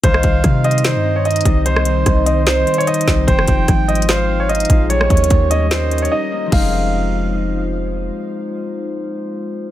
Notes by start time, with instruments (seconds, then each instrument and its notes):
0.03 808-style bass C2, harp D#3, glass harmonica G3 C4 D#4 C5, grand piano C5, soft synth lead F5, kick, closed hi-hat
0.14 cross-stick
0.23 808-style bass C2, harp C4, kick, closed hi-hat
0.44 808-style bass C3, harp D#3, kick, cross-stick, closed hi-hat
0.64 harp C4, grand piano D#5, closed hi-hat
0.71 closed hi-hat
0.78 closed hi-hat
0.84 harp D#3, grand piano C5, soft synth lead D#5, snare, closed hi-hat
0.95 808-style bass G2
1.05 harp C4
1.16 grand piano C#5
1.25 harp D#4, grand piano D#5, closed hi-hat
1.31 closed hi-hat
1.36 closed hi-hat
1.41 closed hi-hat
1.45 808-style bass C2, harp G3, kick, closed hi-hat
1.65 harp D#3, grand piano C5, soft synth lead C5, closed hi-hat
1.76 cross-stick
1.85 harp C4, closed hi-hat
2.06 808-style bass C2, harp D#3, kick, cross-stick, closed hi-hat
2.26 harp C4, grand piano D#5, closed hi-hat
2.47 harp D#3, grand piano C5, soft synth lead C5, snare, closed hi-hat
2.67 harp C4, closed hi-hat
2.74 closed hi-hat
2.78 grand piano C#5, closed hi-hat
2.87 harp D#4, grand piano D#5, closed hi-hat
2.94 closed hi-hat
3.01 closed hi-hat
3.07 808-style bass C2, harp G3, kick, snare
3.27 808-style bass F1, harp F3, glass harmonica G#3 F4 C5, grand piano C5, soft synth lead G5, kick, closed hi-hat
3.39 cross-stick
3.48 808-style bass F1, harp C4, kick, closed hi-hat
3.68 808-style bass G#1, harp F3, kick, cross-stick, closed hi-hat
3.88 harp C4, grand piano D#5, closed hi-hat
3.95 closed hi-hat
4.02 closed hi-hat
4.09 grand piano C5, soft synth lead F5, snare, closed hi-hat
4.29 harp C4
4.40 grand piano C#5
4.49 harp D#4, grand piano D#5, closed hi-hat
4.55 closed hi-hat
4.60 closed hi-hat
4.65 closed hi-hat
4.69 808-style bass A#1, harp G#3, kick, closed hi-hat
4.90 glass harmonica G3 C#4 A#4, harp G3, grand piano C#5, soft synth lead C#5, closed hi-hat
5.01 cross-stick
5.10 808-style bass D#2, harp C#4, kick, closed hi-hat
5.17 closed hi-hat
5.24 closed hi-hat
5.30 808-style bass D#2, harp G3, kick, closed hi-hat
5.51 harp C#4, grand piano D#5, closed hi-hat
5.71 harp G3, grand piano C5, soft synth lead D#5, snare, closed hi-hat
5.91 harp C#4, closed hi-hat
5.98 grand piano C#5, closed hi-hat
6.05 closed hi-hat
6.11 harp D#4, grand piano D#5
6.32 harp A#3
6.46 harp F3
6.50 808-style bass F1, harp G#3 C4, glass harmonica G#3 D#4 F4 C5, soft synth lead F5, grand piano F5, kick, crash
6.58 harp D#4